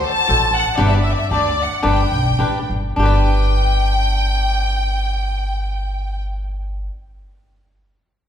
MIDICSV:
0, 0, Header, 1, 4, 480
1, 0, Start_track
1, 0, Key_signature, 1, "major"
1, 0, Tempo, 507614
1, 758, Time_signature, 2, 2, 24, 8
1, 1241, Tempo, 539568
1, 2201, Tempo, 609756
1, 6843, End_track
2, 0, Start_track
2, 0, Title_t, "Violin section"
2, 0, Program_c, 0, 48
2, 65, Note_on_c, 0, 81, 120
2, 537, Note_off_c, 0, 81, 0
2, 539, Note_on_c, 0, 78, 97
2, 732, Note_on_c, 0, 74, 77
2, 762, Note_off_c, 0, 78, 0
2, 815, Note_on_c, 0, 76, 85
2, 825, Note_off_c, 0, 74, 0
2, 884, Note_on_c, 0, 74, 75
2, 906, Note_off_c, 0, 76, 0
2, 967, Note_on_c, 0, 76, 86
2, 981, Note_off_c, 0, 74, 0
2, 1054, Note_on_c, 0, 74, 79
2, 1056, Note_off_c, 0, 76, 0
2, 1112, Note_on_c, 0, 76, 79
2, 1134, Note_off_c, 0, 74, 0
2, 1199, Note_off_c, 0, 76, 0
2, 1237, Note_on_c, 0, 74, 89
2, 1494, Note_off_c, 0, 74, 0
2, 1506, Note_on_c, 0, 78, 78
2, 1718, Note_off_c, 0, 78, 0
2, 1723, Note_on_c, 0, 79, 84
2, 2420, Note_off_c, 0, 79, 0
2, 2686, Note_on_c, 0, 79, 92
2, 5192, Note_off_c, 0, 79, 0
2, 6843, End_track
3, 0, Start_track
3, 0, Title_t, "Cavaquinho"
3, 0, Program_c, 1, 24
3, 262, Note_on_c, 1, 66, 58
3, 271, Note_on_c, 1, 69, 59
3, 276, Note_on_c, 1, 72, 65
3, 281, Note_on_c, 1, 74, 64
3, 422, Note_off_c, 1, 66, 0
3, 426, Note_off_c, 1, 69, 0
3, 429, Note_off_c, 1, 72, 0
3, 431, Note_off_c, 1, 74, 0
3, 729, Note_on_c, 1, 62, 70
3, 733, Note_on_c, 1, 74, 93
3, 734, Note_on_c, 1, 67, 79
3, 740, Note_on_c, 1, 71, 85
3, 896, Note_off_c, 1, 62, 0
3, 898, Note_off_c, 1, 74, 0
3, 899, Note_off_c, 1, 67, 0
3, 902, Note_off_c, 1, 71, 0
3, 1241, Note_on_c, 1, 62, 60
3, 1243, Note_on_c, 1, 67, 51
3, 1251, Note_on_c, 1, 71, 50
3, 1257, Note_on_c, 1, 74, 55
3, 1386, Note_off_c, 1, 62, 0
3, 1387, Note_off_c, 1, 67, 0
3, 1391, Note_off_c, 1, 71, 0
3, 1394, Note_off_c, 1, 74, 0
3, 1697, Note_on_c, 1, 62, 77
3, 1700, Note_on_c, 1, 67, 78
3, 1702, Note_on_c, 1, 74, 83
3, 1705, Note_on_c, 1, 71, 81
3, 1855, Note_off_c, 1, 62, 0
3, 1856, Note_off_c, 1, 67, 0
3, 1857, Note_off_c, 1, 74, 0
3, 1859, Note_off_c, 1, 71, 0
3, 2196, Note_on_c, 1, 62, 49
3, 2197, Note_on_c, 1, 67, 61
3, 2203, Note_on_c, 1, 71, 55
3, 2208, Note_on_c, 1, 74, 65
3, 2344, Note_off_c, 1, 62, 0
3, 2344, Note_off_c, 1, 67, 0
3, 2347, Note_off_c, 1, 71, 0
3, 2349, Note_off_c, 1, 74, 0
3, 2650, Note_on_c, 1, 62, 66
3, 2675, Note_on_c, 1, 67, 76
3, 2701, Note_on_c, 1, 71, 74
3, 2724, Note_on_c, 1, 74, 83
3, 5757, Note_off_c, 1, 62, 0
3, 5770, Note_off_c, 1, 67, 0
3, 5783, Note_off_c, 1, 71, 0
3, 5794, Note_off_c, 1, 74, 0
3, 6843, End_track
4, 0, Start_track
4, 0, Title_t, "Upright bass"
4, 0, Program_c, 2, 32
4, 0, Note_on_c, 2, 38, 79
4, 112, Note_off_c, 2, 38, 0
4, 272, Note_on_c, 2, 33, 87
4, 586, Note_off_c, 2, 33, 0
4, 743, Note_on_c, 2, 31, 96
4, 1062, Note_off_c, 2, 31, 0
4, 1234, Note_on_c, 2, 38, 75
4, 1539, Note_off_c, 2, 38, 0
4, 1710, Note_on_c, 2, 31, 79
4, 1875, Note_off_c, 2, 31, 0
4, 1953, Note_on_c, 2, 35, 66
4, 2172, Note_off_c, 2, 35, 0
4, 2197, Note_on_c, 2, 33, 70
4, 2418, Note_off_c, 2, 33, 0
4, 2439, Note_on_c, 2, 31, 61
4, 2644, Note_off_c, 2, 31, 0
4, 2661, Note_on_c, 2, 31, 69
4, 5731, Note_off_c, 2, 31, 0
4, 6843, End_track
0, 0, End_of_file